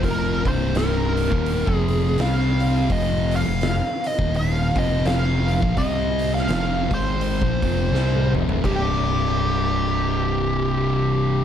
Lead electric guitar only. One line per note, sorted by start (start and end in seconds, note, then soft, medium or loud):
0.05 0.47 A#4 loud
0.48 0.76 C5 medium
0.77 1.75 A#4 medium
1.75 2.23 G#4 medium
2.21 2.92 F5 loud
2.92 3.34 D#5 loud
3.36 4.07 F5 loud
4.07 4.33 D#5 medium
4.37 4.78 F5 loud
4.79 5.06 D#5 medium
5.07 5.78 F5 medium
5.78 6.30 D#5 medium
6.34 6.93 F5 medium
6.94 8.32 C5 medium
8.65 11.45 G4 medium